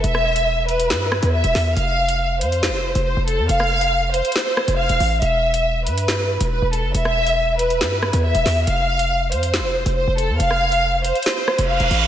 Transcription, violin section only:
0.04 E5
0.68 B4
1.34 E5
1.76 F5
2.42 C5
3.06 C5
3.28 A4
3.49 F5
4.14 C5
4.78 F5
5.22 E5
5.86 B4
6.52 B4
6.73 A4
6.95 E5
7.59 B4
8.24 E5
8.67 F5
9.33 C5
9.96 C5
10.18 A4
10.40 F5
11.05 C5
11.69 F5

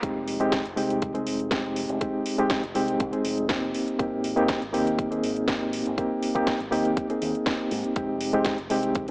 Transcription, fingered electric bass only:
0.03 F1
0.65 F1
0.77 C2
1.27 F1
1.89 F1
2.64 F1
2.75 C2
3.00 C2
3.25 F1
3.99 G#1
4.62 G#1
4.74 D#2
5.23 G#1
5.86 G#1
6.60 G#1
6.72 D#2
7.22 D#2
7.71 G#2
7.96 F1
8.59 F1
8.70 C2

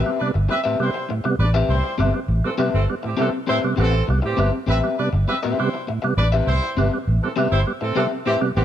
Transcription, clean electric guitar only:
Already playing: B3 A#4 D#5
0.01 C4 G4 B4 E5
0.34 muted clean electric guitar stroke
0.49 muted clean electric guitar stroke
0.64 C4 G4 B4 E5
0.79 muted clean electric guitar stroke
0.94 muted clean electric guitar stroke
1.09 muted clean electric guitar stroke
1.24 muted clean electric guitar stroke
1.54 C4 G4 B4 E5
1.84 muted clean electric guitar stroke
1.98 C4 G4 B4 E5
2.13 muted clean electric guitar stroke
2.58 C4 G4 B4 E5
3.03 muted clean electric guitar stroke
3.17 C4 G4 B4 E5
3.32 muted clean electric guitar stroke
3.47 C4 G4 B4 E5
3.63 muted clean electric guitar stroke
3.76 C4 G4 B4 F#5
3.92 muted clean electric guitar stroke
4.08 muted clean electric guitar stroke
4.22 muted clean electric guitar stroke
4.37 C4 G4 B4 E5
4.52 muted clean electric guitar stroke
4.67 C4 G4 B4 E5
5.13 muted clean electric guitar stroke
5.28 muted clean electric guitar stroke
5.43 C4 G4 B4 E5
5.59 muted clean electric guitar stroke
5.74 muted clean electric guitar stroke
5.88 muted clean electric guitar stroke
6.02 muted clean electric guitar stroke
6.32 C4 G4 B4 E5
6.63 muted clean electric guitar stroke
6.77 C4 G4 B4 E5
6.92 muted clean electric guitar stroke
7.36 C4 G4 B4 E5
7.81 muted clean electric guitar stroke
7.95 C4 G4 B4 E5
8.11 muted clean electric guitar stroke
8.26 C4 G4 B4 E5
8.41 muted clean electric guitar stroke
8.57 C4 G4 B4 F#5

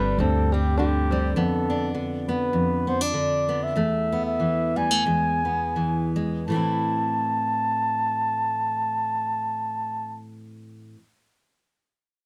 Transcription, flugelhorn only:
Already playing: B4
0.20 A4
0.53 G4
0.78 G4
1.37 A4
2.29 B4
2.88 C5
3.02 D5
3.63 E5
4.26 E5
4.77 G#5
6.47 A5

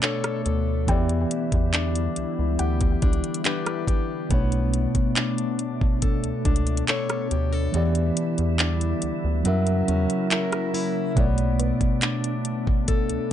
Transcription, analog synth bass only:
0.46 D2
0.88 E2
1.53 E2
2.17 C#2
2.39 C#2
2.60 D2
3.03 C#2
4.31 B1
6.24 C#2
6.46 C#2
7.32 D2
7.74 E2
8.39 E2
9.03 D2
9.24 D2
9.46 F#2
9.89 E2
11.17 B1
13.10 C#2

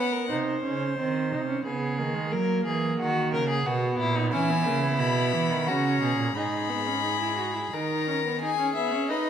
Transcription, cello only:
0.30 C3
0.64 C#3
0.98 D#3
1.32 C3
1.65 C#3
1.99 D#3
2.33 F#3
2.66 E3
3.00 D#3
3.33 C#3
3.66 B2
3.99 A#2
4.33 E3
4.66 C#3
4.99 B2
5.33 E3
5.50 D#3
5.67 C#3
6.01 B2
6.18 A#2
6.35 G#2
7.72 D#3

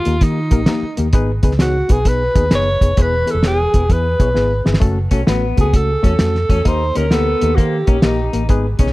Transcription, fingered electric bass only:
0.06 D#2
0.22 D#3
0.52 A#1
0.83 muted fingered electric bass stroke
0.98 D#2
1.13 G#1
1.43 C#2
1.90 B1
2.36 D#2
2.50 F#1
2.82 F1
2.97 E1
3.34 E1
3.74 E1
3.90 E2
4.20 B1
4.36 G#1
4.66 G1
4.82 F#1
5.11 B1
5.28 A1
5.58 C#2
6.04 E2
6.20 F2
6.50 E2
6.66 D#2
6.97 D2
7.42 D#2
7.58 D#3
7.88 A#1
8.03 A#1
8.33 A1
8.50 G#1
8.79 B1

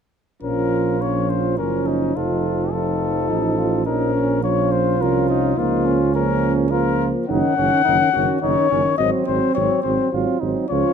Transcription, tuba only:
0.43 A#1
1.59 F#1
2.15 F1
3.30 A1
3.87 A#1
5.01 C2
5.57 C#2
7.29 F#1
7.58 F#1
7.87 F#1
8.15 F#1
8.43 F#1
8.70 F#1
8.99 G#1
9.28 G#1
9.56 G#1
9.85 G#1
10.13 G#1
10.42 G#1
10.70 C#2

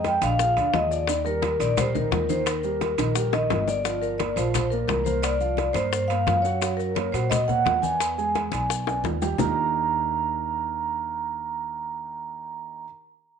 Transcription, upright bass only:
Already playing: F2
0.22 A#1
0.57 D2
0.74 D#2
1.59 A#1
2.11 D#2
2.98 A#1
3.50 G1
4.36 A#1
4.88 C2
5.74 G2
6.27 F#2
7.13 A#2
7.65 E2
8.52 B1
9.04 D#2
9.39 D#2

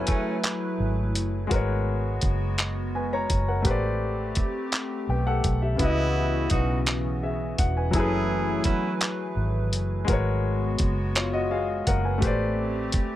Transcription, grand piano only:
Already playing: F#3 E4 G#4 A4 B4
1.47 G#3 F#4
1.51 A#4 B4
1.56 C#5
2.95 B4 G#5
3.13 C#5 A#5
3.48 A#4 F#5
3.62 A3 G4
3.66 B4 C5
3.70 D5
5.10 B4 G5
5.27 A4 F#5
5.62 G4 E5
5.76 C#3 B3
5.80 E4 F#4
5.85 D#5
7.23 G#4 E5
7.59 F#5
7.77 B4 G#5
7.91 F#3 E4
7.95 G#4 A4
7.99 B4
10.05 G#3 F#4
10.09 A#4 B4 C#5
11.16 F4 C#5
11.33 F#4 D#5
11.51 G#4 F5
11.87 A#4 F#5
12.05 B4 G#5
12.18 A3 G4
12.23 B4 C5
12.27 D5

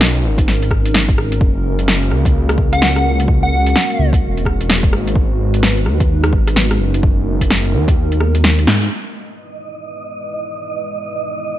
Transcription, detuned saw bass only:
Already playing: B1
0.24 G#1
1.18 G#1
1.41 F#1
2.11 C#2
3.99 C#2
4.22 E1
4.92 G#1
5.86 D#2
6.33 G#1
6.80 F#1
7.74 D#2
8.68 G#2

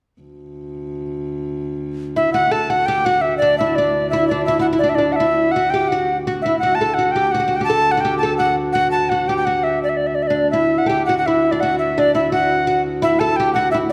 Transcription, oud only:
2.16 E4
2.34 F#4
2.51 A4
2.70 F#4
2.88 G4
3.06 F#4
3.42 D4
3.61 E4
3.78 D4
4.13 E4
4.31 D4
4.48 E4
4.59 E4
4.73 E4
4.84 D4
4.98 D4
5.20 E4
5.56 F#4
5.74 G4
5.92 F#4
6.27 F#4
6.46 E4
6.63 F#4
6.81 A4
6.99 F#4
7.16 G4
7.35 F#4
7.40 F#4
7.48 F#4
7.61 G4
7.70 A4
7.97 F#4
8.05 G4
8.23 A4
8.40 F#4
8.75 F#4
9.11 F#4
9.29 G4
9.47 F#4
10.30 D4
10.53 E4
10.86 G4 A4
11.09 F#4
11.28 E4
11.52 D4
11.63 F#4
11.98 D4
12.15 E4
12.32 F#4
12.67 F#4
13.02 E4
13.21 A4
13.40 G4
13.56 F#4
13.74 E4

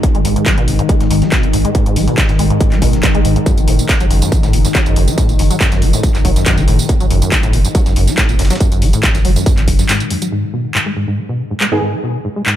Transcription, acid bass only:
0.03 G#2
0.15 G#3
0.25 G#2
0.36 G#2
0.46 G#3
0.58 B2
0.68 C#3
0.79 G#2
0.89 G#3
1.00 G#2
1.10 G#2
1.22 G#3
1.32 B2
1.43 C#3
1.53 G#2
1.65 G#3
1.75 G#2
1.86 G#2
1.96 G#3
2.07 B2
2.18 C#3
2.29 G#2
2.39 G#3
2.50 G#2
2.61 G#2
2.72 G#3
2.82 B2
2.93 C#3
3.03 G#2
3.15 G#3
3.25 G#2
3.36 G#2
3.46 F#2
3.58 F#3
3.68 A2
3.79 B2
3.89 F#2
4.00 F#3
4.11 F#2
4.22 F#2
4.32 F#3
4.43 A2
4.53 B2
4.65 F#2
4.75 F#3
4.86 F#2
4.96 F#2
5.08 F#3
5.18 A2
5.29 B2
5.39 F#2
5.51 F#3
5.61 F#2
5.72 F#2
5.82 F#3
5.93 A2
6.03 B2
6.15 F#2
6.25 F#3
6.36 F#2
6.46 F#2
6.58 F#3
6.68 A2
6.79 B2
6.89 F#2
7.00 F#3
7.11 F#2
7.22 F#2
7.32 F#3
7.43 A2
7.53 B2
7.65 F#2
7.75 F#3
7.86 F#2
7.96 F#2
8.08 F#3
8.18 A2
8.29 B2
8.39 F#2
8.51 F#3
8.61 F#2
8.72 F#2
8.82 F#3
8.93 A2
9.03 B2
9.15 F#2
9.25 F#3
9.36 F#2
9.46 F#2
9.58 F#3
9.68 F#2
9.79 F#2
9.89 G#2
10.00 C#3
10.11 F#2
10.22 F#3
10.32 G#2
10.43 G#3
10.53 B2
10.65 C#3
10.75 G#2
10.86 G#3
10.96 G#2
11.08 G#2
11.18 G#3
11.29 B2
11.39 C#3
11.50 G#2
11.61 G#3
11.72 G#2
11.82 G#2
11.93 G#3
12.03 B2
12.15 C#3
12.25 G#2
12.36 G#3
12.46 G#2

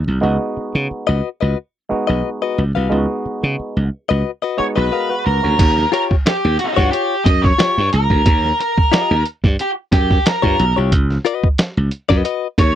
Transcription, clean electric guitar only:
1.07 F#4 B4 D#5
1.41 F#4 B4 D#5
2.07 F#4 B4 D#5
2.42 F#4 B4 D#5
2.75 F#4 B4 F5
4.09 F#4 B4 D#5
4.42 F#4 B4 D#5
4.76 F#4 B4 D#5
4.91 F#4 B4 F5
5.92 F4 G4 C#5
6.76 F4 G4 C#5
6.92 F4 G4 C#5
7.58 F4 G4 C#5
8.92 F4 G4 D#5
10.42 F4 G4 C#5
10.76 F4 G4 C#5
11.25 F#4 B4 D#5
12.09 F#4 B4 D#5
12.24 F#4 B4 D#5

